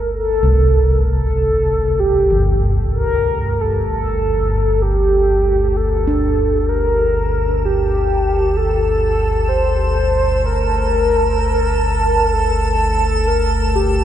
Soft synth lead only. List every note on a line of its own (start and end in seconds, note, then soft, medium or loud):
0.14 1.04 A4 medium
1.08 2.01 A4 loud
2.00 2.71 G4 medium
2.93 3.62 A#4 loud
3.61 3.85 A4 medium
3.86 4.83 A4 medium
4.82 5.78 G4 medium
5.76 6.71 A4 loud
6.69 7.67 A#4 medium
7.65 8.58 G4 loud
8.57 9.50 A4 medium
9.49 10.47 C5 loud
10.46 12.34 A#4 loud
12.33 13.29 A4 loud
13.27 13.77 A#4 loud
13.75 14.04 G4 medium